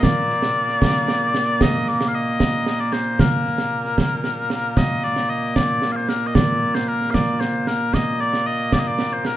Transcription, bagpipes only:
Already playing: A#2 A#3
0.04 D5
1.62 D#5
1.88 D5
2.08 F5
2.14 D#5
2.80 D5
2.93 C5
3.20 A#4
4.77 D#5
5.04 D5
5.29 D#5
5.56 D5
5.92 F5
5.96 C5
6.09 A#4
6.27 D#5
6.35 D5
6.75 C5
6.88 A#4
7.11 D5 F5
7.40 C5
7.67 A#4
7.94 D#5
8.20 D5
8.46 D#5
8.73 D5
8.79 D#5
8.87 D5
9.13 C5
9.26 A#4

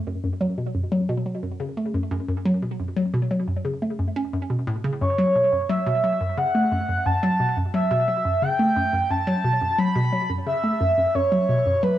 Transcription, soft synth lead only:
5.01 C#5
5.69 E5
6.38 F#5
7.06 A5
7.74 E5
8.42 G5
9.11 A5
9.79 B5
10.47 E5
11.15 C#5
11.83 B4

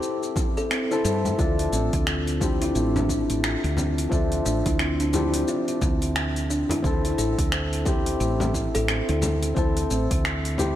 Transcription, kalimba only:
Already playing: C4
0.37 E4
0.57 A4
0.71 C4
0.91 E4
1.05 A4
1.39 F4
1.73 C4
2.42 D4
2.62 E4
2.76 C4
2.96 D4
3.10 E4
3.44 F4
3.78 C4
4.46 D4
4.66 E4
4.80 C4
5.01 D4
5.14 E4
5.48 F4
5.82 C4
6.50 D4
6.71 E4
6.84 C4
7.05 E4
7.18 A4
7.52 C5
7.86 C4
8.55 E4
8.75 A4
8.89 C4
9.09 E4
9.23 A4
9.57 C5
9.91 C4
10.59 E4

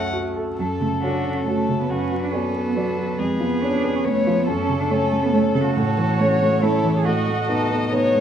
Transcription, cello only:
Already playing: F#4
0.59 F#3
0.81 A3
1.03 D4
1.37 C#4
1.46 A3
1.80 B3
1.90 C#4
2.22 D4
2.32 C#4
2.66 B3
2.76 F#3
3.18 G#3
3.40 B3
3.63 D4
3.96 C#4
4.06 A3
4.40 B3
4.48 C#4
4.81 D4
4.92 C#4
5.24 B3
5.34 A3
5.55 A4
5.66 F#4
6.63 E4
6.97 G#4
7.05 F#4

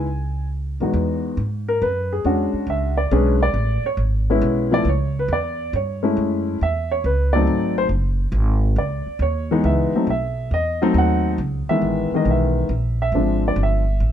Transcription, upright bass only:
Already playing: C#2
0.80 B2
0.94 E2
1.37 G#2
1.82 F#2
2.25 E2
2.53 muted upright bass stroke
2.67 C#2
3.11 B1
3.54 A1
3.84 muted upright bass stroke
3.97 G#1
4.42 B1
4.85 C#2
5.28 E2
5.73 G2
6.17 F#2
6.61 E2
7.04 C#2
7.47 G#1
7.89 F#1
8.32 G#1
8.76 C#2
9.06 muted upright bass stroke
9.19 D#2
9.64 C#2
9.92 muted upright bass stroke
10.07 B1
10.51 E2
10.94 D#2
11.38 C#2
11.68 muted upright bass stroke
11.82 A1
12.11 muted upright bass stroke
12.25 B1
12.69 A#1
13.12 G#1
13.56 G1
14.00 A1

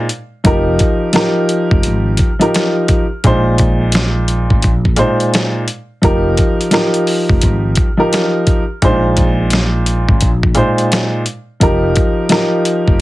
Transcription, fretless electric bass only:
0.45 F1
1.72 F1
1.85 G#1
3.25 A#1
4.51 G#1
4.65 A#1
6.04 F1
7.30 F1
7.44 G#1
8.83 A#1
10.09 G#1
10.23 A#1
11.62 F1
12.88 F1

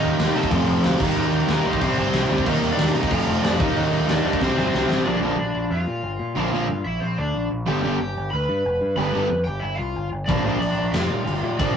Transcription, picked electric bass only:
0.03 D#2
0.19 D#2
0.35 C3
0.51 F1
0.67 F1
0.83 D2
1.00 D#2
1.16 D#2
1.32 D#2
1.49 D#2
1.66 D#2
1.81 C2
1.98 G1
2.13 C2
2.29 D2
2.47 D#2
2.62 D#2
2.79 D#2
2.94 C3
3.11 F1
3.27 F1
3.44 F1
3.60 D#2
3.77 D#2
3.93 D#2
4.08 D#2
4.25 D#2
4.41 C2
4.58 G1
4.74 C2
4.90 A1
5.07 A#1
5.22 A#1
5.38 A#1
5.54 A#1
5.70 F2
5.87 A#2
6.03 G1
6.19 A#2
6.36 A#1
6.53 A#1
6.68 G2
6.86 A#1
7.02 A#1
7.18 D2
7.35 A#1
7.51 A#1
7.67 G1
7.83 G1
8.00 G1
8.17 G1
8.33 D2
8.49 G2
8.65 F1
8.81 G2
8.97 G1
9.13 G1
9.29 F2
9.46 G1
9.62 G1
9.79 C2
9.96 G1
10.12 G1
10.29 A#1
10.45 A#1
10.61 A#1
10.78 A#1
10.93 F2
11.10 A#2
11.26 G1
11.43 A#2
11.60 A#1

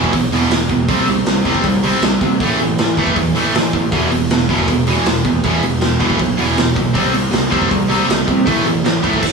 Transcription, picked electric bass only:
0.13 B1
0.30 E1
0.50 E1
0.69 E1
0.88 C2
1.06 C2
1.25 C2
1.45 C2
1.64 C2
2.01 C2
2.21 C3
2.40 A1
2.58 A1
2.77 A1
2.97 A1
3.16 E2
3.35 A1
3.54 A1
3.73 A1
3.92 E1
4.12 E1
4.30 E1
4.49 E1
4.68 E1
5.06 E1
5.25 E2
5.44 E1
5.63 E1
5.81 E1
6.00 E1
6.19 B1
6.38 E1
6.57 E1
6.76 B1
6.95 C2
7.14 C2
7.33 C2
7.52 C2
7.71 C2
8.09 C2
8.28 C3
8.47 A1
8.64 A1
8.82 A1
9.04 A1

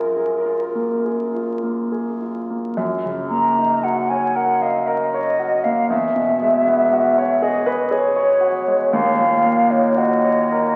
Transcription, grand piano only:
Already playing: F#2 F4 G#4
0.16 G#4
0.46 F4
0.75 A#3
1.05 G#4
1.34 F4
1.63 A#3
1.92 G#4
2.22 F4
2.50 A#3
2.77 F#2
3.05 C#3
3.31 A#3
3.58 D#4
3.85 F#4
4.11 C#5
4.36 A#4
4.62 D#5
4.87 A#4
5.14 C#5
5.39 F#4
5.65 A#3
5.90 E2
6.16 B2
6.42 G#3
6.67 B3
6.93 F#4
7.18 C#5
7.42 G#4
7.66 B4
7.91 G#4
8.16 C#5
8.41 F#4
8.67 G#3
8.93 D#2
9.19 A#2
9.45 A#3
9.72 D#4
9.97 F#4
10.24 C#5
10.52 A#4

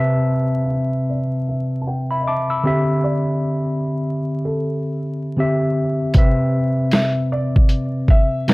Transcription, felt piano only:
0.64 F5
0.71 E5
1.09 D5
1.48 E5
1.82 A5
1.87 G5
2.21 D#5
2.26 E5
3.04 D5
4.45 A4
6.93 E5
7.32 D5
8.10 E5

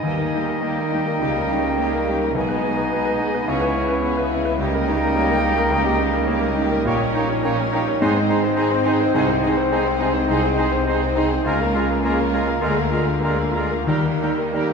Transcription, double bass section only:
0.05 D#2
1.20 C#2
2.36 B1
3.48 C#2
6.88 A#1
8.01 G#1
9.15 C2
11.46 C#2
12.64 D2
13.89 D#2

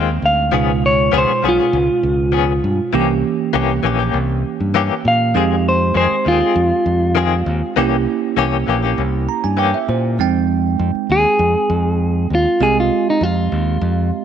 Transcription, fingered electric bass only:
Already playing: D#2
0.22 D2
0.53 C#2
1.13 C#2
1.29 muted fingered electric bass stroke
1.44 B1
1.73 C#2
2.03 C#2
2.64 G2
2.93 C2
3.54 C2
3.83 A#1
4.14 C2
4.60 G2
5.05 A#2
5.35 F2
5.95 F2
6.11 muted fingered electric bass stroke
6.26 D#2
6.56 F2
6.86 F2
7.46 D#2
7.77 C2
8.37 C2
8.68 A#1
8.98 C2
9.44 G2
9.89 A#2
10.19 F2
10.79 F2
10.95 muted fingered electric bass stroke
11.09 D#2
11.39 F2
11.70 F2
12.30 D#2
12.60 C2
13.21 F2
13.52 D#2
13.81 F2

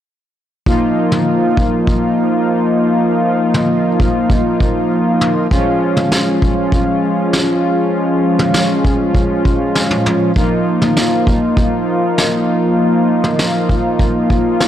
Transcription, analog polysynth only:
0.67 F3 A#3 D#4 F4
5.51 F3 G#3 C#4 F4
10.36 F3 A#3 D#4 F4

